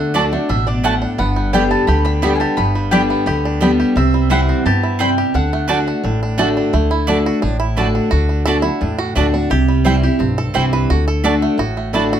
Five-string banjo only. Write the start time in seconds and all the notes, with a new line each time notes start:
Already playing: A3 D4
0.15 D4
0.33 A3
0.49 D4
0.67 D4
0.84 A3
1.02 D4
1.19 B3
1.36 G3
1.53 D4
1.71 B3
1.88 G4
2.06 D4
2.23 G3
2.41 G4
2.58 B3
2.75 G3
2.93 D4
3.10 B3
3.27 G4
3.45 D4
3.63 G3
3.80 G4
3.97 C4
4.14 G3
4.31 E4
4.49 C4
4.66 G4
4.83 E4
5.01 G3
5.18 G4
5.35 D4
5.53 A3
5.70 D4
5.88 D4
6.05 D4
6.23 D4
6.39 A3
6.57 D4
6.74 A3
6.91 E4
7.08 D4
7.26 F#4
7.42 D4
7.60 E4
7.77 D4
7.95 D4
8.11 F#4
8.29 D4
8.46 A4
8.62 E4
8.81 D4
8.98 F#4
9.16 D4
9.34 D4
9.51 G4
9.68 G3
9.85 E4
10.03 G4
10.20 C4
10.38 A4
10.55 C4
10.73 B4
10.90 F#4
11.08 A4
11.24 D4
11.42 A3
11.59 F#4
11.77 A3
11.94 E4
12.13 F#4